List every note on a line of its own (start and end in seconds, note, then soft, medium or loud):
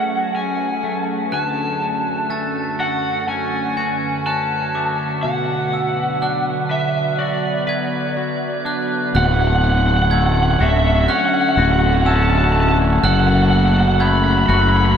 0.00 1.28 F#3 medium
0.00 0.82 A3 soft
0.00 5.21 A3 medium
0.00 0.33 C#4 soft
0.00 5.21 C#4 medium
0.00 2.79 F#4 soft
0.00 1.28 G#4 medium
0.00 1.30 B4 medium
0.00 0.35 F#5 medium
0.34 1.32 C#4 soft
0.34 1.05 G#5 medium
0.83 1.32 A3 soft
1.31 3.77 D2 soft
1.31 5.20 F#2 medium
1.31 9.11 D3 medium
1.31 9.11 F#4 medium
1.31 3.26 A4 medium
1.31 2.32 A5 medium
1.31 2.30 F#6 medium
2.30 4.74 A3 soft
2.30 2.80 G#5 medium
2.30 2.80 A6 medium
2.79 3.77 F#4 soft
2.79 3.28 F#5 medium
2.79 3.78 C#6 soft
3.26 4.26 C#4 soft
3.26 5.21 B4 medium
3.26 4.26 G#5 medium
3.77 6.69 F#4 medium
3.77 4.26 G#6 medium
4.26 5.25 C#4 soft
4.26 4.96 A5 medium
4.26 4.75 F#6 medium
4.75 5.24 A3 soft
4.75 5.73 D6 soft
5.23 7.69 B2 medium
5.23 9.11 F#3 medium
5.23 9.11 B3 medium
5.23 9.11 B4 medium
5.23 6.75 F#5 medium
5.73 6.22 E6 soft
6.22 8.64 D4 medium
6.22 7.20 F#6 medium
6.69 7.66 B4 soft
6.69 7.18 E5 medium
7.18 8.15 F#4 medium
7.18 8.62 D5 soft
7.67 9.14 B4 medium
7.67 8.66 G#6 medium
8.17 9.15 F#4 soft
8.65 9.14 D4 soft
8.65 9.14 F#6 medium
9.14 10.57 D1 medium
9.14 11.58 D2 medium
9.14 12.99 D3 medium
9.14 12.99 F#3 medium
9.14 14.97 A3 medium
9.14 12.99 C#4 medium
9.14 12.99 F#4 medium
9.14 9.24 F#5 medium
9.14 10.12 F#6 medium
9.25 9.32 F#5 medium
9.33 9.40 F#5 medium
9.41 9.47 F#5 medium
9.47 9.55 F#5 medium
9.55 9.63 F#5 medium
9.64 9.71 F#5 medium
9.72 9.78 F#5 medium
9.79 9.87 F#5 medium
9.87 9.95 F#5 medium
9.96 10.02 F#5 medium
10.02 10.10 F#5 medium
10.11 12.55 A3 medium
10.11 10.18 F#5 medium
10.11 11.09 G#6 medium
10.20 10.26 F#5 medium
10.26 10.34 F#5 medium
10.34 10.42 F#5 medium
10.42 10.50 F#5 medium
10.51 10.59 F#5 medium
10.59 11.07 D1 medium
10.59 11.57 F#4 medium
10.59 10.69 E5 medium
10.59 10.67 F#5 medium
10.69 10.77 E5 medium
10.78 10.86 E5 medium
10.87 10.95 E5 medium
10.95 11.01 E5 medium
11.02 11.10 E5 medium
11.08 12.05 C#4 medium
11.08 11.18 F#5 medium
11.08 12.06 F#6 medium
11.19 11.25 F#5 medium
11.26 11.33 F#5 medium
11.34 11.41 F#5 medium
11.41 11.48 F#5 medium
11.49 11.55 F#5 medium
11.56 12.99 D1 medium
11.56 14.48 F#4 medium
11.56 11.63 F#5 medium
11.63 11.71 F#5 medium
11.72 11.79 F#5 medium
11.80 11.86 F#5 medium
11.86 11.94 F#5 medium
11.95 12.01 F#5 medium
12.02 14.97 C#4 medium
12.02 12.07 F#5 medium
12.06 12.15 A5 medium
12.06 13.03 E6 medium
12.16 12.22 A5 medium
12.23 12.29 A5 medium
12.30 12.37 A5 medium
12.37 12.44 A5 medium
12.44 12.52 A5 medium
12.52 13.99 A3 medium
12.52 12.60 A5 medium
12.60 12.68 A5 medium
12.68 12.76 A5 medium
13.02 14.45 F#1 medium
13.02 14.97 F#2 medium
13.02 14.97 C#3 medium
13.02 14.97 F#3 medium
13.02 14.95 F#4 medium
13.02 13.13 F#5 medium
13.02 14.00 F#6 medium
13.14 13.20 F#5 medium
13.20 13.26 F#5 medium
13.27 13.34 F#5 medium
13.35 13.42 F#5 medium
13.42 13.50 F#5 medium
13.50 13.57 F#5 medium
13.57 13.65 F#5 medium
13.66 13.73 F#5 medium
13.74 13.80 F#5 medium
13.80 13.88 F#5 medium
13.88 13.95 F#5 medium
13.95 14.03 F#5 medium
13.99 14.97 A3 medium
13.99 14.08 B5 medium
13.99 14.49 G#6 medium
14.08 14.16 B5 medium
14.17 14.24 B5 medium
14.24 14.31 B5 medium
14.32 14.38 B5 medium
14.38 14.46 B5 medium
14.46 14.94 F#1 medium
14.46 14.97 F#4 medium
14.46 14.54 B5 medium
14.46 14.96 F#6 medium
14.54 14.62 B5 medium
14.62 14.69 B5 medium
14.69 14.76 B5 medium
14.77 14.84 B5 medium
14.86 14.92 B5 medium
14.92 14.97 B5 medium